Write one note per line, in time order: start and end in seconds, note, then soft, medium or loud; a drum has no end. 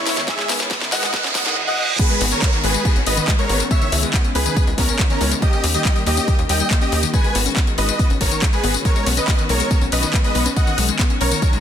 0.00 0.18 E4 medium
0.00 0.18 C#5 loud
0.00 riser medium
0.06 0.21 D#3 medium
0.06 0.21 G#3 medium
0.06 0.21 B3 medium
0.06 0.10 B3 medium
0.06 0.21 E4 medium
0.06 snare loud
0.06 open hi-hat medium
0.06 tambourine medium
0.17 0.24 D#3 loud
0.17 snare medium
0.17 closed hi-hat medium
0.17 tambourine soft
0.28 0.43 D#3 medium
0.28 0.37 G#3 medium
0.28 0.43 G#3 medium
0.28 0.43 B3 medium
0.28 0.43 E4 medium
0.28 0.50 G#4 medium
0.28 0.50 E5 loud
0.28 kick loud
0.28 snare loud
0.28 closed hi-hat medium
0.28 tambourine soft
0.39 0.45 G#3 loud
0.39 snare medium
0.39 closed hi-hat soft
0.49 0.62 E1 loud
0.49 0.57 D#3 medium
0.49 0.57 G#3 medium
0.49 0.53 B3 loud
0.49 0.57 B3 medium
0.49 0.57 E4 medium
0.49 snare loud
0.49 open hi-hat loud
0.49 tambourine medium
0.60 0.75 D#3 medium
0.60 0.75 G#3 medium
0.60 0.75 B3 medium
0.60 0.67 C#4 medium
0.60 0.75 E4 medium
0.60 snare medium
0.60 closed hi-hat medium
0.60 tambourine soft
0.71 0.75 B3 medium
0.71 kick loud
0.71 snare loud
0.71 closed hi-hat medium
0.71 tambourine soft
0.81 0.89 D#3 medium
0.81 0.88 D#3 loud
0.81 0.89 G#3 medium
0.81 0.89 B3 medium
0.81 0.89 E4 medium
0.81 snare medium
0.81 closed hi-hat soft
0.92 1.05 E1 medium
0.92 1.07 D#3 medium
0.92 1.07 G#3 medium
0.92 1.02 G#3 medium
0.92 1.07 B3 medium
0.92 1.07 E4 medium
0.92 1.21 D#5 medium
0.92 1.21 F#5 loud
0.92 snare loud
0.92 open hi-hat medium
0.92 tambourine medium
1.03 1.09 G#3 loud
1.03 snare medium
1.03 closed hi-hat medium
1.03 tambourine soft
1.13 1.29 D#3 medium
1.13 1.29 G#3 medium
1.13 1.29 B3 medium
1.13 1.18 B3 loud
1.13 1.29 E4 medium
1.13 kick loud
1.13 snare loud
1.13 closed hi-hat medium
1.13 tambourine soft
1.13 reverse cymbal medium
1.24 1.31 E1 medium
1.24 1.31 C#4 medium
1.24 snare medium
1.24 closed hi-hat soft
1.35 1.50 D#3 medium
1.35 1.50 G#3 medium
1.35 1.50 B3 medium
1.35 1.39 B3 medium
1.35 1.50 E4 medium
1.35 1.57 D#5 medium
1.35 1.57 F#5 loud
1.35 kick medium
1.35 snare loud
1.35 open hi-hat loud
1.35 tambourine medium
1.46 1.52 D#3 loud
1.46 snare loud
1.46 closed hi-hat medium
1.46 tambourine soft
1.67 1.89 D#5 medium
1.67 1.89 F#5 loud
1.99 2.14 D#3 medium
1.99 2.14 G#3 medium
1.99 2.09 G#3 medium
1.99 2.14 B3 medium
1.99 2.14 F#4 medium
1.99 2.21 G#4 medium
1.99 2.21 B4 loud
1.99 kick loud
1.99 closed hi-hat medium
1.99 crash loud
1.99 tambourine medium
1.99 downlifter medium
2.10 2.17 G#3 loud
2.10 closed hi-hat soft
2.10 tambourine soft
2.21 2.34 G#1 loud
2.21 2.28 D#3 medium
2.21 2.28 G#3 medium
2.21 2.28 B3 medium
2.21 2.25 B3 loud
2.21 2.28 F#4 medium
2.21 open hi-hat loud
2.31 2.46 D#3 medium
2.31 2.46 G#3 medium
2.31 2.46 B3 medium
2.31 2.38 C#4 medium
2.31 2.46 F#4 medium
2.31 2.53 A#4 medium
2.31 2.53 C#5 loud
2.31 closed hi-hat medium
2.31 tambourine medium
2.42 2.46 B3 medium
2.42 kick loud
2.42 clap loud
2.42 closed hi-hat medium
2.42 tambourine soft
2.53 2.60 D#3 medium
2.53 2.59 D#3 loud
2.53 2.60 G#3 medium
2.53 2.60 B3 medium
2.53 2.60 F#4 medium
2.53 closed hi-hat soft
2.53 tambourine soft
2.64 2.77 G#1 medium
2.64 2.79 D#3 medium
2.64 2.79 G#3 medium
2.64 2.73 G#3 medium
2.64 2.79 B3 medium
2.64 2.79 F#4 medium
2.64 2.93 G#4 medium
2.64 2.93 B4 loud
2.64 open hi-hat medium
2.74 2.81 G#3 loud
2.74 closed hi-hat medium
2.74 tambourine medium
2.85 3.00 D#3 medium
2.85 3.00 G#3 medium
2.85 3.00 B3 medium
2.85 2.89 B3 loud
2.85 3.00 F#4 medium
2.85 kick loud
2.85 closed hi-hat medium
2.85 tambourine medium
2.96 3.02 G#1 medium
2.96 3.02 C#4 medium
2.96 closed hi-hat soft
2.96 tambourine soft
3.06 3.20 G#1 medium
3.06 3.22 D#3 medium
3.06 3.21 G#3 medium
3.06 3.10 B3 medium
3.06 3.22 B3 medium
3.06 3.21 F#4 medium
3.06 3.28 B4 medium
3.06 3.28 D#5 medium
3.06 open hi-hat loud
3.17 3.24 D#3 loud
3.17 closed hi-hat medium
3.17 tambourine medium
3.28 3.35 D#3 medium
3.28 3.37 G#3 medium
3.28 3.35 G#3 medium
3.28 3.35 B3 medium
3.28 3.35 F#4 medium
3.28 kick loud
3.28 clap loud
3.28 closed hi-hat medium
3.28 tambourine medium
3.39 3.46 D#3 medium
3.39 3.46 G#3 medium
3.39 3.45 G#3 loud
3.39 3.46 B3 medium
3.39 3.46 F#4 medium
3.39 3.61 A#4 medium
3.39 3.61 C#5 loud
3.39 closed hi-hat soft
3.39 tambourine soft
3.49 3.62 G#1 medium
3.49 3.64 D#3 medium
3.49 3.64 G#3 medium
3.49 3.53 B3 loud
3.49 3.64 B3 medium
3.49 3.64 F#4 medium
3.49 open hi-hat medium
3.60 3.67 C#4 medium
3.60 closed hi-hat medium
3.60 tambourine medium
3.71 3.86 C#3 medium
3.71 3.86 G#3 medium
3.71 3.86 B3 medium
3.71 3.75 B3 medium
3.71 3.86 E4 medium
3.71 3.93 C#5 medium
3.71 3.93 E5 loud
3.71 kick loud
3.71 closed hi-hat medium
3.71 tambourine soft
3.81 3.88 D#3 loud
3.81 closed hi-hat soft
3.81 tambourine soft
3.92 4.05 C#2 loud
3.92 4.00 C#3 medium
3.92 4.02 G#3 medium
3.92 4.00 G#3 medium
3.92 4.00 B3 medium
3.92 4.00 E4 medium
3.92 open hi-hat loud
4.03 4.18 C#3 medium
4.03 4.09 G#3 loud
4.03 4.18 G#3 medium
4.03 4.18 B3 medium
4.03 4.18 E4 medium
4.03 closed hi-hat medium
4.03 tambourine medium
4.14 4.18 B3 loud
4.14 kick loud
4.14 clap loud
4.14 closed hi-hat medium
4.14 tambourine medium
4.24 4.32 C#3 medium
4.24 4.32 G#3 medium
4.24 4.32 B3 medium
4.24 4.31 C#4 medium
4.24 4.32 E4 medium
4.24 closed hi-hat soft
4.24 tambourine soft
4.35 4.48 C#2 medium
4.35 4.50 C#3 medium
4.35 4.50 G#3 medium
4.35 4.39 B3 medium
4.35 4.50 B3 medium
4.35 4.50 E4 medium
4.35 4.64 G#4 medium
4.35 4.64 B4 loud
4.35 open hi-hat loud
4.46 4.52 D#3 loud
4.46 closed hi-hat medium
4.46 tambourine medium
4.56 4.72 C#3 medium
4.56 4.66 G#3 medium
4.56 4.72 G#3 medium
4.56 4.72 B3 medium
4.56 4.72 E4 medium
4.56 kick loud
4.56 closed hi-hat medium
4.56 tambourine soft
4.67 4.74 C#2 medium
4.67 4.74 G#3 loud
4.67 closed hi-hat soft
4.67 tambourine soft
4.78 4.91 C#2 medium
4.78 4.93 C#3 medium
4.78 4.93 G#3 medium
4.78 4.82 B3 loud
4.78 4.93 B3 medium
4.78 5.00 C#4 medium
4.78 4.93 E4 medium
4.78 5.00 A#4 loud
4.78 kick medium
4.78 open hi-hat loud
4.89 4.95 C#4 medium
4.89 closed hi-hat medium
4.89 tambourine medium
4.99 5.07 C#3 medium
4.99 5.07 G#3 medium
4.99 5.07 B3 medium
4.99 5.03 B3 medium
4.99 5.07 E4 medium
4.99 kick loud
4.99 clap loud
4.99 closed hi-hat medium
4.99 tambourine medium
5.10 5.18 C#3 medium
5.10 5.17 D#3 loud
5.10 5.18 G#3 medium
5.10 5.18 B3 medium
5.10 5.32 C#4 medium
5.10 5.18 E4 medium
5.10 5.32 A#4 loud
5.10 closed hi-hat soft
5.10 tambourine soft
5.21 5.34 C#2 medium
5.21 5.36 C#3 medium
5.21 5.30 G#3 medium
5.21 5.36 G#3 medium
5.21 5.36 B3 medium
5.21 5.36 E4 medium
5.21 open hi-hat medium
5.31 5.38 G#3 loud
5.31 closed hi-hat medium
5.31 tambourine medium
5.42 5.57 D#3 medium
5.42 5.57 G3 medium
5.42 5.46 A#3 loud
5.42 5.57 A#3 medium
5.42 5.64 G4 medium
5.42 5.57 G4 medium
5.42 5.64 D#5 loud
5.42 kick loud
5.42 closed hi-hat medium
5.42 tambourine medium
5.53 5.59 C#4 medium
5.53 closed hi-hat soft
5.53 tambourine soft
5.64 5.77 D#2 loud
5.64 5.71 D#3 medium
5.64 5.71 G3 medium
5.64 5.68 A#3 medium
5.64 5.71 A#3 medium
5.64 5.71 G4 medium
5.64 open hi-hat loud
5.74 5.81 D#3 loud
5.74 5.89 D#3 medium
5.74 5.89 G3 medium
5.74 5.89 A#3 medium
5.74 5.96 G4 medium
5.74 5.89 G4 medium
5.74 5.96 D#5 loud
5.74 closed hi-hat medium
5.74 tambourine medium
5.85 5.95 G3 medium
5.85 kick loud
5.85 clap loud
5.85 closed hi-hat medium
5.85 tambourine medium
5.96 6.03 D#3 medium
5.96 6.02 G3 loud
5.96 6.03 G3 medium
5.96 6.03 A#3 medium
5.96 6.03 G4 medium
5.96 closed hi-hat soft
5.96 tambourine soft
6.06 6.20 D#2 medium
6.06 6.21 D#3 medium
6.06 6.21 G3 medium
6.06 6.21 A#3 medium
6.06 6.10 A#3 loud
6.06 6.36 G4 medium
6.06 6.21 G4 medium
6.06 6.36 D#5 loud
6.06 open hi-hat loud
6.17 6.24 C#4 medium
6.17 closed hi-hat medium
6.17 tambourine medium
6.28 6.43 D#3 medium
6.28 6.43 G3 medium
6.28 6.43 A#3 medium
6.28 6.32 A#3 medium
6.28 6.43 G4 medium
6.28 kick loud
6.28 closed hi-hat medium
6.28 tambourine medium
6.39 6.45 D#2 medium
6.39 6.45 D#3 loud
6.39 closed hi-hat soft
6.39 tambourine soft
6.49 6.62 D#2 medium
6.49 6.64 D#3 medium
6.49 6.64 G3 medium
6.49 6.59 G3 medium
6.49 6.64 A#3 medium
6.49 6.64 G4 medium
6.49 6.71 D#5 medium
6.49 6.71 G5 medium
6.49 open hi-hat loud
6.60 6.67 G3 loud
6.60 closed hi-hat medium
6.60 tambourine medium
6.71 6.78 D#3 medium
6.71 6.78 G3 medium
6.71 6.78 A#3 medium
6.71 6.75 A#3 loud
6.71 6.78 G4 medium
6.71 kick loud
6.71 clap loud
6.71 closed hi-hat medium
6.71 tambourine medium
6.81 6.89 D#3 medium
6.81 6.89 G3 medium
6.81 6.89 A#3 medium
6.81 6.88 C#4 medium
6.81 6.89 G4 medium
6.81 7.03 G4 medium
6.81 7.03 D#5 loud
6.81 closed hi-hat soft
6.81 tambourine soft
6.92 7.05 D#2 medium
6.92 7.07 D#3 medium
6.92 7.07 G3 medium
6.92 7.07 A#3 medium
6.92 6.96 A#3 medium
6.92 7.07 G4 medium
6.92 open hi-hat loud
7.03 7.09 D#3 loud
7.03 closed hi-hat soft
7.03 tambourine medium
7.14 7.29 D#3 medium
7.14 7.23 G#3 medium
7.14 7.29 G#3 medium
7.14 7.29 B3 medium
7.14 7.29 F#4 medium
7.14 7.36 B4 medium
7.14 7.36 G#5 loud
7.14 kick loud
7.14 closed hi-hat soft
7.14 tambourine medium
7.24 7.31 G#3 loud
7.24 closed hi-hat soft
7.24 tambourine soft
7.35 7.48 G#1 loud
7.35 7.42 D#3 medium
7.35 7.42 G#3 medium
7.35 7.43 B3 medium
7.35 7.39 B3 loud
7.35 7.43 F#4 medium
7.35 open hi-hat loud
7.46 7.61 D#3 medium
7.46 7.61 G#3 medium
7.46 7.61 B3 medium
7.46 7.52 C#4 medium
7.46 7.61 F#4 medium
7.46 closed hi-hat soft
7.46 tambourine medium
7.56 7.60 B3 medium
7.56 kick loud
7.56 clap loud
7.56 closed hi-hat medium
7.56 tambourine medium
7.67 7.74 D#3 loud
7.67 7.75 D#3 medium
7.67 7.75 G#3 medium
7.67 7.75 B3 medium
7.67 7.75 F#4 medium
7.67 closed hi-hat soft
7.67 tambourine soft
7.78 7.91 G#1 medium
7.78 7.93 D#3 medium
7.78 7.93 G#3 medium
7.78 7.87 G#3 medium
7.78 7.93 B3 medium
7.78 7.93 F#4 medium
7.78 8.07 B4 medium
7.78 8.07 D#5 loud
7.78 open hi-hat medium
7.89 7.95 G#3 loud
7.89 closed hi-hat soft
7.89 tambourine medium
7.99 8.14 D#3 medium
7.99 8.14 G#3 medium
7.99 8.03 B3 loud
7.99 8.14 B3 medium
7.99 8.14 F#4 medium
7.99 kick loud
7.99 closed hi-hat soft
7.99 tambourine medium
8.10 8.17 G#1 medium
8.10 8.17 C#4 medium
8.10 closed hi-hat soft
8.10 tambourine soft
8.21 8.34 G#1 medium
8.21 8.36 D#3 medium
8.21 8.36 G#3 medium
8.21 8.36 B3 medium
8.21 8.25 B3 medium
8.21 8.36 F#4 medium
8.21 8.43 A#4 medium
8.21 8.43 C#5 loud
8.21 kick medium
8.21 open hi-hat loud
8.31 8.38 D#3 loud
8.31 tambourine medium
8.42 8.50 D#3 medium
8.42 8.52 G#3 medium
8.42 8.50 G#3 medium
8.42 8.50 B3 medium
8.42 8.50 F#4 medium
8.42 kick loud
8.42 clap loud
8.42 closed hi-hat soft
8.42 tambourine medium
8.53 8.60 D#3 medium
8.53 8.59 G#3 loud
8.53 8.61 G#3 medium
8.53 8.60 B3 medium
8.53 8.60 F#4 medium
8.53 8.75 G#4 medium
8.53 8.75 B4 loud
8.53 closed hi-hat soft
8.53 tambourine soft
8.64 8.77 G#1 medium
8.64 8.79 D#3 medium
8.64 8.79 G#3 medium
8.64 8.79 B3 medium
8.64 8.68 B3 loud
8.64 8.79 F#4 medium
8.64 open hi-hat loud
8.74 8.81 C#4 medium
8.74 closed hi-hat soft
8.74 tambourine medium
8.85 9.00 D#3 medium
8.85 8.95 G#3 medium
8.85 9.00 B3 medium
8.85 9.00 C#4 medium
8.85 9.00 F#4 medium
8.85 9.07 A#4 medium
8.85 9.07 C#5 loud
8.85 kick loud
8.85 closed hi-hat medium
8.85 tambourine medium
8.96 9.02 G#3 loud
8.96 closed hi-hat soft
8.96 tambourine soft
9.06 9.20 B1 loud
9.06 9.14 D#3 medium
9.06 9.14 B3 medium
9.06 9.10 B3 loud
9.06 9.14 C#4 medium
9.06 9.14 F#4 medium
9.06 open hi-hat loud
9.17 9.32 D#3 medium
9.17 9.32 B3 medium
9.17 9.32 C#4 medium
9.17 9.24 C#4 medium
9.17 9.32 F#4 medium
9.17 9.39 B4 medium
9.17 9.39 D#5 loud
9.17 closed hi-hat soft
9.17 tambourine medium
9.28 9.32 B3 medium
9.28 kick loud
9.28 clap loud
9.28 closed hi-hat medium
9.28 tambourine medium
9.39 9.46 D#3 medium
9.39 9.45 D#3 loud
9.39 9.46 B3 medium
9.39 9.46 C#4 medium
9.39 9.46 F#4 medium
9.39 closed hi-hat soft
9.39 tambourine soft
9.49 9.62 B1 medium
9.49 9.64 D#3 medium
9.49 9.59 G#3 medium
9.49 9.64 B3 medium
9.49 9.64 C#4 medium
9.49 9.64 F#4 medium
9.49 9.79 A#4 medium
9.49 9.79 C#5 loud
9.49 open hi-hat medium
9.60 9.67 G#3 loud
9.60 closed hi-hat soft
9.60 tambourine medium
9.71 9.86 D#3 medium
9.71 9.86 B3 medium
9.71 9.75 B3 loud
9.71 9.86 C#4 medium
9.71 9.86 F#4 medium
9.71 kick loud
9.71 closed hi-hat medium
9.71 tambourine medium
9.81 9.88 B1 medium
9.81 9.88 C#4 medium
9.81 closed hi-hat soft
9.81 tambourine soft
9.92 10.05 B1 loud
9.92 10.07 D#3 medium
9.92 10.07 B3 medium
9.92 9.96 B3 medium
9.92 10.07 C#4 medium
9.92 10.07 F#4 medium
9.92 10.14 B4 medium
9.92 10.14 D#5 loud
9.92 open hi-hat loud
10.03 10.09 D#3 loud
10.03 closed hi-hat medium
10.03 tambourine medium
10.14 10.21 D#3 medium
10.14 10.23 G#3 medium
10.14 10.21 B3 medium
10.14 10.21 C#4 medium
10.14 10.21 F#4 medium
10.14 kick loud
10.14 clap loud
10.14 closed hi-hat medium
10.14 tambourine medium
10.24 10.32 D#3 medium
10.24 10.31 G#3 loud
10.24 10.32 B3 medium
10.24 10.32 C#4 medium
10.24 10.32 F#4 medium
10.24 10.46 B4 medium
10.24 10.46 D#5 loud
10.24 closed hi-hat soft
10.24 tambourine soft
10.35 10.48 B1 medium
10.35 10.50 D#3 medium
10.35 10.39 B3 loud
10.35 10.50 B3 medium
10.35 10.50 C#4 medium
10.35 10.50 F#4 medium
10.35 open hi-hat medium
10.46 10.52 C#4 medium
10.46 closed hi-hat soft
10.46 tambourine medium
10.56 10.72 D#3 medium
10.56 10.60 B3 medium
10.56 10.72 B3 medium
10.56 10.72 C#4 medium
10.56 10.72 F#4 medium
10.56 10.78 D#5 medium
10.56 10.78 F#5 loud
10.56 kick loud
10.56 closed hi-hat medium
10.56 tambourine medium
10.67 10.74 D#3 loud
10.67 closed hi-hat soft
10.67 tambourine soft
10.78 10.91 B1 loud
10.78 10.85 D#3 medium
10.78 10.87 G#3 medium
10.78 10.85 B3 medium
10.78 10.85 C#4 medium
10.78 10.85 F#4 medium
10.78 open hi-hat loud
10.89 11.04 D#3 medium
10.89 10.95 G#3 loud
10.89 11.04 B3 medium
10.89 11.04 C#4 medium
10.89 11.04 F#4 medium
10.89 closed hi-hat medium
10.89 tambourine medium
10.99 11.03 B3 loud
10.99 kick loud
10.99 clap loud
10.99 closed hi-hat medium
10.99 tambourine medium
11.10 11.18 D#3 medium
11.10 11.18 B3 medium
11.10 11.17 C#4 medium
11.10 11.18 C#4 medium
11.10 11.18 F#4 medium
11.10 closed hi-hat soft
11.10 tambourine soft
11.21 11.34 B1 medium
11.21 11.36 D#3 medium
11.21 11.25 B3 medium
11.21 11.36 B3 medium
11.21 11.36 C#4 medium
11.21 11.36 F#4 medium
11.21 11.50 A#4 medium
11.21 11.50 C#5 loud
11.21 open hi-hat medium
11.31 11.38 D#3 loud
11.31 closed hi-hat medium
11.31 tambourine medium
11.42 11.57 D#3 medium
11.42 11.52 G#3 medium
11.42 11.57 B3 medium
11.42 11.57 C#4 medium
11.42 11.57 F#4 medium
11.42 kick loud
11.42 closed hi-hat medium
11.42 tambourine medium
11.53 11.59 B1 medium
11.53 11.59 G#3 loud
11.53 closed hi-hat soft
11.53 tambourine soft